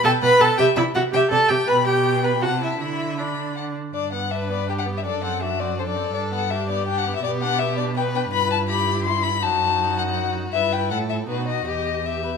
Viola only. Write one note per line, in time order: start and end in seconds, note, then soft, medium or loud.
0.04 0.12 A4 medium
0.23 0.43 B4 loud
0.41 0.59 A4 medium
0.59 0.66 G4 medium
0.77 0.84 E4 medium
0.95 1.02 F#4 medium
1.13 1.31 G4 medium
1.31 1.52 A4 medium
1.50 1.67 G4 medium
1.68 1.75 B4 medium
1.85 2.22 G4 medium
2.23 2.31 B4 medium
2.42 2.49 F#4 medium
2.61 2.79 E4 soft
2.80 3.20 E4 medium
3.18 3.75 D4 soft
3.93 4.14 D4 soft
4.12 4.32 B3 soft
4.31 4.51 D4 soft
4.50 4.67 B3 soft
4.68 4.88 D4 soft
4.87 5.05 B3 soft
5.05 5.24 D4 soft
5.23 5.43 C4 soft
5.42 5.61 D4 soft
5.60 5.77 C4 soft
5.78 5.98 D4 soft
5.96 6.13 C4 soft
6.14 6.34 D4 soft
6.32 6.52 B3 soft
6.51 6.71 D4 soft
6.70 6.87 B3 soft
6.88 7.08 D4 soft
7.06 7.24 B3 soft
7.25 7.44 B3 soft
7.43 7.62 D4 soft
7.60 7.79 B3 soft
7.78 7.96 D4 soft
7.97 8.16 B3 soft
8.15 8.33 D4 soft
8.34 9.39 E4 medium
9.43 10.49 D#4 soft
10.52 11.23 E4 soft
11.27 11.62 D#4 soft
11.65 12.37 G4 soft